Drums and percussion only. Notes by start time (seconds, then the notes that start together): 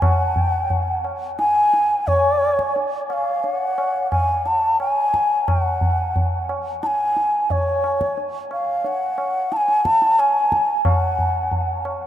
0.02 tabla na, tabla ge
0.36 tabla ge
0.70 tabla tin, tabla ge
1.04 tabla na
1.39 tabla te
1.73 tabla te
2.08 tabla tin, tabla ge
2.42 tabla na
2.59 tabla ke
2.76 tabla tin
3.10 tabla na
3.44 tabla tin
3.78 tabla na
4.12 tabla na, tabla ge
4.46 tabla te
4.80 tabla na
5.14 tabla ke
5.48 tabla na, tabla ge
5.81 tabla ge
6.16 tabla tin, tabla ge
6.49 tabla na
6.83 tabla te
7.17 tabla te
7.50 tabla tin, tabla ge
7.84 tabla na
8.01 tabla ke
8.18 tabla tin
8.51 tabla na
8.84 tabla tin
9.18 tabla na
9.52 tabla te
9.68 tabla te
9.85 tabla ke
10.02 tabla te
10.19 tabla na
10.52 tabla ke
10.85 tabla na, tabla ge
11.19 tabla ge
11.52 tabla tin, tabla ge
11.85 tabla na